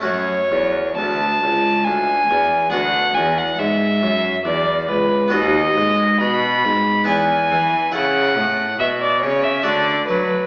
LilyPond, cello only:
\new Staff \with { instrumentName = "Cello" } { \clef bass \time 3/4 \key fis \minor \tempo 4 = 69 fis,8 e,8 d,8 cis,8 d,8 e,8 | d,8 e,8 gis,8 fis,8 e,8 cis,8 | dis,8 gis,8 b,8 gis,8 e,8 e8 | cis8 a,8 b,8 cis8 d8 fis8 | }